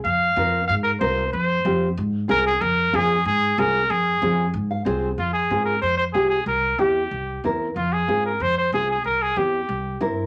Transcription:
<<
  \new Staff \with { instrumentName = "Trumpet" } { \time 4/4 \key f \minor \tempo 4 = 187 f''2 f''8 bes'8 c''4 | c''2 r4 bes'8 aes'8 | bes'4 aes'4 aes'4 bes'4 | aes'2 r2 |
f'8 aes'4 bes'8 c''8 c''8 aes'8 aes'8 | bes'4 g'2 r4 | f'8 aes'4 bes'8 c''8 c''8 aes'8 aes'8 | bes'8 aes'8 g'2 r4 | }
  \new Staff \with { instrumentName = "Nylon-string guitar" } { \time 4/4 \key f \minor << { r1 | r1 | r1 | r2 r8 f''8 c''4 |
r1 | r1 | r1 | r1 | } \\ { r4 <c' f' bes'>8 r4. <c' f' bes'>8 r8 | r4 <c' f' g'>8 r4. <c' f' aes'>8 r8 | r4 <c' f' aes'>8 r4. <c' f' aes'>8 r8 | r4 <c' f' aes'>8 r4. <c' f' aes'>8 r8 |
r4 <c' f' aes'>8 r4. <c' f' g'>8 r8 | r4 <c' e' g'>8 r4. <c' e' bes'>8 r8 | r4 <c' f' aes'>8 r4. <c' f' aes'>8 r8 | r4 <c' e' g'>8 r4. <c' e' bes'>8 r8 | } >> }
  \new Staff \with { instrumentName = "Upright bass" } { \clef bass \time 4/4 \key f \minor f,4 f,4 aes,4 c,4 | f,4 f,4 aes,4 c,4 | f,4 f,4 aes,4 c,4 | f,4 f,4 aes,4 c,4 |
f,4 aes,4 f,4 c,4 | c,4 e,4 c,4 e,4 | f,4 aes,4 f,4 c,4 | c,4 e,4 c,4 g,4 | }
>>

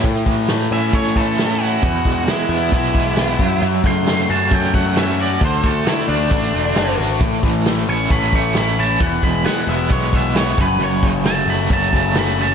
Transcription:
<<
  \new Staff \with { instrumentName = "Lead electric guitar" } { \time 4/4 \key a \major \tempo 4 = 134 r4. e''8 cis''8 a'4 fis'8~ | fis'4 e'4 e'2 | r8 c'''4 a''8 g''8 fis''8 e''8 d''8 | c''8 a'8 e'8 d'2 r8 |
r4. cis'''8 b''8 cis'''8 b''8 a''8 | fis''8 b''8 fis''8 e''8 cis''8 e''8 cis''8 b'8 | cis''8 r8 a''8 b''8 a''8 a''8 b''8 a''8 | }
  \new Staff \with { instrumentName = "Overdriven electric guitar" } { \time 4/4 \key a \major a,8 e8 a8 cis'8 a8 e8 cis'8 e'8 | e8 gis8 gis8 b8 gis8 e8 b8 fis8 | fis8 a8 a8 cis'8 a8 fis8 cis'8 fis'8 | d8 a8 a8 d'8 a8 d8 d'8 fis'8 |
a,8 e8 a8 cis'8 a8 e8 cis'8 e'8 | e8 gis8 gis8 b8 gis8 e8 b8 fis,8 | fis,8 cis8 fis8 a8 fis8 cis8 a8 cis'8 | }
  \new Staff \with { instrumentName = "Overdriven electric guitar" } { \time 4/4 \key a \major a,8 e8 a8 e'8 cis'8 a8 e'8 cis'8 | e,8 b,8 gis8 e'8 b8 gis8 e'8 fis,8 | fis,8 cis8 a8 fis'8 cis'8 a8 fis'8 cis'8 | d8 a8 a8 fis'8 d'8 a8 fis'8 d'8 |
a,8 e8 a8 e'8 cis'8 a8 e'8 cis'8 | e,8 b,8 gis8 e'8 b8 gis8 e'8 fis,8 | fis,8 cis8 a8 fis'8 cis'8 a8 fis'8 cis'8 | }
  \new Staff \with { instrumentName = "Picked electric bass" } { \clef bass \time 4/4 \key a \major a,8 a,4 a,8 a,2 | e,8 e,8 r8 e,8 b,,4. fis,8 | fis,8 fis,4 fis,8 fis,2 | d,8 d,8 r8 d,8 a,,8 e,,8 fis,,8 gis,,8 |
a,,8 a,,4 a,,8 a,,2 | e,,8 e,,8 r8 e,,8 b,,4. fis,,8 | fis,,8 fis,,4 fis,,8 fis,,2 | }
  \new DrumStaff \with { instrumentName = "Drums" } \drummode { \time 4/4 <hho bd>8 bd8 <hho sn>4 <hho bd>8 bd8 <hho sn>4 | <hho bd>8 bd8 <hho sn>4 <hho bd>8 bd8 <hho sn>8 bd8 | hho8 bd8 <hho sn>4 <hho bd>8 bd8 <hho sn>4 | <hho bd>8 bd8 <hho sn>4 <hho bd>4 <hho sn>4 |
<hho bd>8 bd8 <hho sn>4 <hho bd>8 bd8 <hho sn>4 | <hho bd>8 bd8 <hho sn>4 <hho bd>8 bd8 <hho sn>8 bd8 | hho8 bd8 <hho sn>4 <hho bd>8 bd8 <hho sn>4 | }
>>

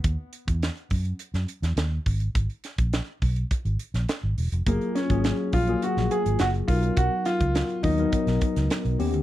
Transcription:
<<
  \new Staff \with { instrumentName = "Grand piano" } { \time 4/4 \key b \lydian \tempo 4 = 104 r1 | r1 | ais8 cis'4 eis'8 fis'8 gis'8 fis'8 eis'8 | fis'8 eis'4 dis'2 r8 | }
  \new Staff \with { instrumentName = "Tine electric piano" } { \time 4/4 \key b \lydian r1 | r1 | <fis ais eis' gis'>8 r16 <fis ais eis' gis'>8. r16 <fis ais eis' gis'>4. r16 <fis b dis' ais'>8~ | <fis b dis' ais'>4 r8 <fis b dis' ais'>16 <fis b dis' ais'>4. r16 <dis b cis' g'>8 | }
  \new Staff \with { instrumentName = "Fingered electric bass" } { \clef bass \time 4/4 \key b \lydian dis,16 r8 e,8 r16 fis,8 r16 fis,16 r16 e,16 dis,8 gis,,8 | gis,,16 r8 ais,,8 r16 b,,8 r16 gis,,16 r16 ais,,16 r16 gis,,16 e,,16 eis,,16 | fis,,16 r8 gis,,8 r16 ais,,8 r16 ais,,16 r16 gis,,16 fis,,8 b,,8 | b,,16 r8 cis,8 r16 dis,8 r16 b,,16 r16 cis,16 r16 b,,16 dis,16 d,16 | }
  \new DrumStaff \with { instrumentName = "Drums" } \drummode { \time 4/4 <hh bd>8 hh16 <hh bd>16 <hh sn>16 hh16 <hho bd>16 hh16 hh16 <hh sn>16 hh16 <hh sn>16 <hh sn>8 <hho bd>16 hh16 | <hh bd>16 hh16 <hh sn>16 <hh bd>16 <hh sn>8 <hho bd>16 hh16 <hh bd>16 hh16 hh16 <hh sn>16 <hh sn>8 hho16 hh16 | <hh bd>16 hh16 <hh sn>16 <hh bd>16 <hh sn>8 <hho bd>16 hh16 hh16 sn16 hh16 hh16 <hh sn>16 hh16 <hho bd>16 hh16 | <hh bd>8 <hh sn>16 <hh bd>16 <hh sn>16 hh16 <hho bd>16 hh16 <hh bd>16 <hh sn>16 <hh bd>16 <hh sn>16 <hh sn>16 hh16 hho16 hh16 | }
>>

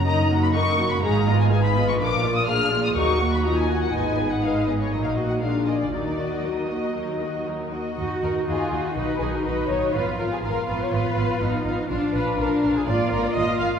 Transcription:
<<
  \new Staff \with { instrumentName = "Violin section" } { \time 4/4 \key ees \minor \tempo 4 = 123 bes''8. ces'''16 des'''8. ces'''16 bes''8. aes''16 aes''16 ces'''8 des'''16 | d'''8. ees'''16 f'''8. ees'''16 des'''8. ces'''16 bes''16 aes''8 ges''16 | aes''8. ges''16 f''8 ees''16 des''16 ees''16 f''8 ges''16 f''8 ees''16 d''16 | d''4 ees''2 r4 |
ees''8 ees''8 ees''8 ees''8 dis''8 dis''8 dis''8 dis''8 | f''8 f''8 f''8 f''8 f''8 f''8 f''8 f''8 | f''8 f''8 f''8 f''8 f''8 f''8 f''8 f''8 | }
  \new Staff \with { instrumentName = "Violin section" } { \time 4/4 \key ees \minor <bes' ees''>8 <ges' ges''>8 <bes' ees''>8 <ges' ges''>8 <aes' f''>8 <f' ees''>8 <aes' f''>8 <f' ees''>8 | <bes' f''>8 <f' d''>8 <bes' f''>8 <f' d''>8 <bes' ees''>8 <ges' ges''>8 <bes' ees''>8 <ges' ges''>8 | <ces'' ees''>8 <aes' ces''>8 <ces'' ees''>8 <aes' ces''>8 <ees' bes'>8 <ges' ees''>8 <f' bes'>8 <aes' d''>8 | <ees' bes'>8 <ges' ees''>8 <ees' bes'>8 <ges' ees''>8 <ees' bes'>8 <ges' ees''>8 <ees' bes'>8 <ges' ees''>8 |
r8 bes'8 aes'8. ges'16 b'8 aes'16 bes'16 b'8 des''8 | ces''8 bes'16 aes'16 bes'8 ces''16 des''16 ces''4. r8 | r8 ces''8 bes'8. aes'16 d''8 bes'16 d''16 ees''8 f''8 | }
  \new Staff \with { instrumentName = "French horn section" } { \time 4/4 \key ees \minor << { ees'4 bes'4 aes'4 ces''4 | bes'4 aes'4 ges'4 f'4 | ees'2. d'4 | ges'2.~ ges'8 r8 |
ges'1 | f'1 | d'2 f'2 | } \\ { r1 | r1 | r1 | r1 |
ees1 | f1~ | f2 bes2 | } >> }
  \new Staff \with { instrumentName = "Viola section" } { \time 4/4 \key ees \minor <ees ees'>8 <ges bes>8 <ees ees'>8 <ges bes>8 <aes ees'>8 <ces' f'>8 <aes ees'>8 <ces' f'>8 | <f d'>8 <bes f'>8 <f d'>8 <bes f'>8 <ges ees'>8 <bes ges'>8 <ges ees'>8 <bes ges'>8 | <aes ees'>8 ces'8 <aes ees'>8 ces'8 <ges ees'>8 <bes ges'>8 <aes d'>8 <bes f'>8 | <ges ees'>8 <bes ges'>8 <ges ees'>8 <bes ges'>8 <ges ees'>8 <bes ges'>8 <ges ees'>8 <bes ges'>8 |
<ees' ges'>8 <ees' ges'>8 <ees' ges'>8 <ees' ges'>8 <dis' fis'>8 <dis' fis'>8 <dis' fis'>8 <dis' fis'>8 | <ces' f'>8 <ces' f'>8 <ces' f'>8 <ces' f'>8 <ces' f'>8 <ces' f'>8 <ces' f'>8 <ces' f'>8 | <d' f'>8 <d' f'>8 <d' f'>8 <d' f'>8 <bes f'>8 <bes f'>8 <bes f'>8 <bes f'>8 | }
  \new Staff \with { instrumentName = "Cello section" } { \time 4/4 \key ees \minor fis,2 aes,2 | bes,2 ees,2 | aes,2 bes,2 | ees2.~ ees8 r8 |
ges'4 f'4 dis'2 | f'4 f'2 ees'4 | d'4 d'4 f'4 f'4 | }
  \new Staff \with { instrumentName = "Double bass section" } { \clef bass \time 4/4 \key ees \minor fis,,2 aes,,2 | bes,,2 ees,2 | aes,,2 bes,,2 | ees,2.~ ees,8 r8 |
ees,8 ees,8 ees,8 ees,8 b,,8 b,,8 b,,8 b,,8 | aes,,8 aes,,8 aes,,8 aes,,8 aes,,8 aes,,8 aes,,8 aes,,8 | bes,,8 bes,,8 bes,,8 bes,,8 aes,,8 aes,,8 aes,,8 aes,,8 | }
>>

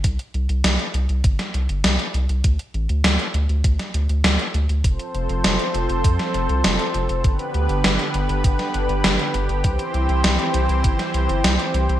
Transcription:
<<
  \new Staff \with { instrumentName = "Analog synth pad" } { \time 4/4 \key c \major \tempo 4 = 100 << { r1 | r1 | <f c' c''>1 | <d b b'>1 |
<e c' c''>1 | } \\ { r1 | r1 | a'1 | g'1~ |
g'1 | } >> }
  \new Staff \with { instrumentName = "Analog synth bass" } { \clef bass \time 4/4 \key c \major c,16 r16 c,16 c,16 c,16 r16 c,16 c,16 g,,16 r16 c,16 g,,16 c,16 r16 c,16 c,16 | d,16 r16 a,,16 d,16 d,16 r16 d,16 d,16 d,16 r16 d,16 d,16 d,16 r16 d,16 d,16 | f,,16 r16 f,,16 f,,16 f,,16 r16 f,,16 f,,16 f,16 r16 f,,16 c,16 f,,16 r16 f,,16 f,,16 | g,,16 r16 d,16 g,,16 g,,16 r16 g,,16 g,,16 g,,16 r16 g,,16 g,,16 g,,16 r16 g,,16 g,,16 |
c,16 r16 c,16 c,16 c,16 r16 c,16 c,16 g,,16 r16 c,16 g,,16 c,16 r16 c,16 c,16 | }
  \new DrumStaff \with { instrumentName = "Drums" } \drummode { \time 4/4 <hh bd>16 hh16 hh16 hh16 <hh sn>16 hh16 hh16 hh16 <hh bd>16 <hh sn>16 hh16 hh16 <hh sn>16 hh16 hh16 hh16 | <hh bd>16 hh16 hh16 hh16 <hh sn>16 hh16 hh16 hh16 <hh bd>16 <hh sn>16 hh16 hh16 <hh sn>16 hh16 hh16 hh16 | <hh bd>16 hh16 hh16 hh16 <hh sn>16 hh16 hh16 hh16 <hh bd>16 <hh sn>16 hh16 hh16 <hh sn>16 hh16 hh16 hh16 | <hh bd>16 hh16 hh16 hh16 <hh sn>16 hh16 hh16 hh16 <hh bd>16 <hh sn>16 hh16 hh16 <hh sn>16 hh16 hh16 hh16 |
<hh bd>16 hh16 hh16 hh16 <hh sn>16 hh16 hh16 hh16 <hh bd>16 <hh sn>16 hh16 hh16 <hh sn>16 hh16 hh16 hh16 | }
>>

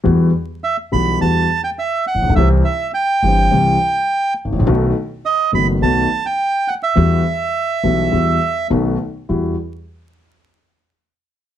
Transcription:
<<
  \new Staff \with { instrumentName = "Bandoneon" } { \time 4/4 \key e \minor \tempo 4 = 104 r4 e''8 b''8 a''8. g''16 e''8 fis''8 | e''8 e''8 g''2~ g''8 r8 | r4 dis''8 b''8 a''8. g''8. fis''16 e''16~ | e''2. r4 |
r1 | }
  \new Staff \with { instrumentName = "Grand piano" } { \clef bass \time 4/4 \key e \minor <e, e g b fis'>8 r4 <b,, b, e g b fis'>8 <e, e g b fis'>8 r4 r32 a,,32 ais,,32 b,,32 | <c, c e g c' g'>8 r4 <g,, g, e g c' g'>8 <c, c e g c' g'>8 r4 r32 gis,,32 a,,32 ais,,32 | <b,, b, dis a b fis'>8 r4 <fis,, fis, dis a b fis'>8 <b,, b, dis a b fis'>8 r4. | <e, e g b fis'>8 r4 <b,, b, e g b fis'>8 <e, e g b fis'>8 r8 <b,, b, dis a b fis'>8 r8 |
<e, g e' fis'>8 r2. r8 | }
  \new Staff \with { instrumentName = "Upright bass" } { \clef bass \time 4/4 \key e \minor e,16. r4 r32 b,,16. r32 e,16. r4 r16 a,,32 ais,,32 b,,32 | c,16. r4 r32 g,,16. r32 c,16. r4 r16 gis,,32 a,,32 ais,,32 | b,,16. r4 r32 fis,,16. r32 b,,16. r4. r32 | e,16. r4 r32 b,,16. r32 e,16. r8 r32 b,,16. r8 r32 |
e,8 r2. r8 | }
>>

